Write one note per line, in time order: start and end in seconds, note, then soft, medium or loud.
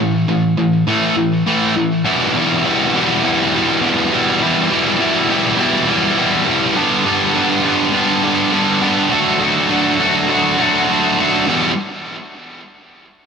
0.00 0.25 A2 medium
0.00 0.25 E3 medium
0.29 0.55 A2 medium
0.29 0.55 E3 medium
0.58 0.84 A2 medium
0.58 0.84 E3 medium
0.87 1.14 A2 medium
0.87 1.15 E3 loud
0.87 1.15 A3 loud
1.16 1.43 A2 medium
1.16 1.43 E3 medium
1.46 1.74 A2 medium
1.46 1.74 E3 loud
1.46 1.74 A3 loud
1.76 2.02 A2 medium
1.76 2.02 E3 medium
2.04 2.33 E2 medium
2.04 2.33 B2 medium
2.04 2.35 E3 medium
2.04 2.35 G3 medium
2.04 2.36 E4 medium
2.04 2.36 G4 loud
2.34 2.63 E2 medium
2.34 2.63 B2 medium
2.34 2.64 E3 medium
2.34 2.64 G3 medium
2.34 2.65 E4 medium
2.34 2.65 G4 medium
2.63 2.92 E2 medium
2.63 2.92 B2 medium
2.63 2.93 E3 medium
2.63 2.94 G3 medium
2.63 2.94 E4 medium
2.63 2.95 G4 medium
2.93 3.22 E2 medium
2.93 3.23 B2 medium
2.93 3.23 E3 medium
2.93 3.24 G3 medium
2.93 3.24 E4 medium
2.93 3.25 G4 medium
3.23 3.51 E2 medium
3.23 3.52 B2 loud
3.23 3.53 E3 medium
3.23 3.54 G3 medium
3.23 3.54 E4 loud
3.23 3.55 G4 loud
3.53 3.80 E2 medium
3.53 3.80 B2 medium
3.53 3.81 E3 medium
3.53 3.83 G3 medium
3.53 3.82 E4 medium
3.53 3.83 G4 medium
3.81 4.09 E2 medium
3.81 4.10 B2 medium
3.81 4.11 E3 medium
3.81 4.12 G3 medium
3.81 4.12 E4 medium
3.81 4.13 G4 medium
4.10 4.39 E2 medium
4.10 4.40 B2 medium
4.10 4.40 E3 medium
4.10 4.41 G3 medium
4.10 4.41 E4 medium
4.10 4.43 G4 medium
4.40 4.68 E2 medium
4.40 4.69 B2 medium
4.40 4.69 E3 medium
4.40 4.71 G3 medium
4.40 4.70 E4 loud
4.40 4.71 G4 medium
4.69 4.98 E2 medium
4.69 4.98 B2 medium
4.69 4.99 E3 medium
4.69 5.00 G3 medium
4.69 5.00 E4 medium
4.69 5.01 G4 medium
4.99 5.28 E2 medium
4.99 5.29 B2 medium
4.99 5.29 E3 medium
4.99 5.30 G3 medium
4.99 5.30 E4 medium
4.99 5.31 G4 medium
5.29 5.57 E2 medium
5.29 5.57 B2 medium
5.29 5.58 E3 medium
5.29 5.58 G3 medium
5.29 5.59 E4 medium
5.29 5.59 G4 medium
5.58 5.86 E2 medium
5.58 5.87 B2 loud
5.58 5.87 E3 loud
5.58 5.88 G3 loud
5.58 5.88 E4 medium
5.58 5.89 G4 loud
5.87 6.15 E2 medium
5.87 6.16 B2 medium
5.87 6.16 E3 medium
5.87 6.17 G3 medium
5.87 6.17 E4 loud
5.87 6.17 G4 medium
6.16 6.44 E2 medium
6.16 6.44 B2 medium
6.16 6.45 E3 medium
6.16 6.45 G3 medium
6.16 6.46 E4 medium
6.16 6.46 G4 loud
6.45 6.74 E2 medium
6.45 6.74 B2 medium
6.45 6.74 E3 medium
6.45 6.74 G3 medium
6.45 6.75 E4 medium
6.45 6.75 G4 loud
6.75 7.04 G2 medium
6.75 7.04 D3 medium
6.75 7.05 G3 medium
6.75 7.05 B3 loud
6.75 7.07 D4 loud
6.75 7.06 G4 loud
7.05 7.33 G2 medium
7.05 7.33 D3 medium
7.05 7.34 G3 medium
7.05 7.34 B3 medium
7.05 7.35 D4 medium
7.05 7.35 G4 medium
7.34 7.62 G2 medium
7.34 7.63 D3 medium
7.34 7.63 G3 medium
7.34 7.64 B3 medium
7.34 7.65 D4 medium
7.34 7.64 G4 medium
7.63 7.91 G2 medium
7.63 7.91 D3 medium
7.63 7.92 G3 medium
7.63 7.92 B3 loud
7.63 7.94 D4 medium
7.63 7.94 G4 medium
7.92 8.21 G2 medium
7.92 8.22 D3 loud
7.92 8.22 G3 loud
7.92 8.22 B3 loud
7.92 8.24 D4 loud
7.92 8.23 G4 loud
8.22 8.50 G2 medium
8.22 8.51 D3 medium
8.22 8.51 G3 medium
8.22 8.52 B3 medium
8.22 8.53 D4 medium
8.22 8.52 G4 medium
8.51 8.80 G2 medium
8.51 8.81 D3 medium
8.51 8.81 G3 medium
8.51 8.82 B3 medium
8.51 8.82 D4 medium
8.51 8.83 G4 medium
8.81 9.09 G2 medium
8.81 9.09 D3 medium
8.81 9.10 G3 medium
8.81 9.10 B3 loud
8.81 9.11 D4 medium
8.81 9.11 G4 medium
9.10 9.39 D3 loud
9.10 9.39 F#3 loud
9.10 9.40 A3 loud
9.10 9.40 D4 loud
9.10 9.41 F#4 medium
9.40 9.68 D3 medium
9.40 9.69 F#3 medium
9.40 9.70 A3 medium
9.40 9.70 D4 loud
9.40 9.70 F#4 medium
9.69 9.98 D3 medium
9.69 9.98 F#3 medium
9.69 9.99 A3 medium
9.69 9.99 D4 loud
9.69 10.00 F#4 medium
9.99 10.27 D3 medium
9.99 10.28 F#3 medium
9.99 10.28 A3 medium
9.99 10.29 D4 medium
9.99 10.29 F#4 loud
10.29 10.57 D3 loud
10.29 10.57 F#3 loud
10.29 10.58 A3 loud
10.29 10.58 D4 loud
10.29 10.59 F#4 loud
10.58 10.87 D3 medium
10.58 10.88 F#3 medium
10.58 10.89 A3 medium
10.58 10.89 D4 medium
10.58 10.90 F#4 medium
10.89 11.16 D3 medium
10.89 11.17 F#3 medium
10.89 11.17 A3 medium
10.89 11.18 D4 loud
10.89 11.19 F#4 medium
11.18 11.45 D3 medium
11.18 11.45 F#3 medium
11.18 11.46 A3 medium
11.18 11.46 D4 loud
11.18 11.46 F#4 medium
11.47 11.71 E2 loud
11.47 11.70 B2 loud
11.47 11.71 E3 loud
11.47 11.71 G3 loud
11.47 11.71 B3 loud
11.47 11.71 G4 loud